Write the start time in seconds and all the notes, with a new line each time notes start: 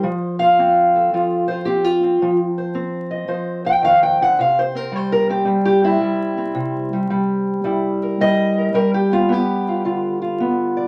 Already playing: C5
0.03 F3
0.39 F4 F5
0.59 C4
0.95 A4
1.14 F3 F4
1.48 F4 C5
1.65 C4 G4
1.84 F4
2.03 C4
2.22 F3
2.58 C5
2.75 C4
3.11 D#5
3.28 F3 C5
3.65 C5 G5
3.83 D#3 F5
4.03 G5
4.21 D3 F#5
4.39 C3 F5
4.59 C5
4.75 C4 A#4
4.92 G3 C5
5.12 A#4
5.29 C4 G4
5.45 G3 C4
5.65 G4
5.83 C4 E4
6.01 G3
6.37 C4
6.55 C3
6.93 G3
7.10 G3
7.64 G3 E4
8.03 A#4
8.21 G3 D#5
8.58 A#4
8.74 G3 A#4
8.94 G4
9.12 B3 F4
9.29 B3 G4
9.68 F4
9.85 D3 F4
10.22 F4
10.40 B3
10.77 D5